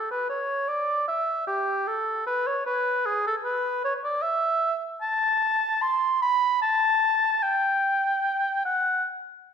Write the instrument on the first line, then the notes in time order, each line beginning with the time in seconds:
oboe
Already playing: A4
0.11 B4
0.30 C#5
0.68 D5
1.08 E5
1.48 G4
1.87 A4
2.27 B4
2.47 C#5
2.66 B4
3.06 G#4
3.27 A4
3.44 B4
3.85 C#5
4.05 D5
4.22 E5
5.02 A5
5.82 C6
6.22 B5
6.62 A5
7.43 G5
8.65 F#5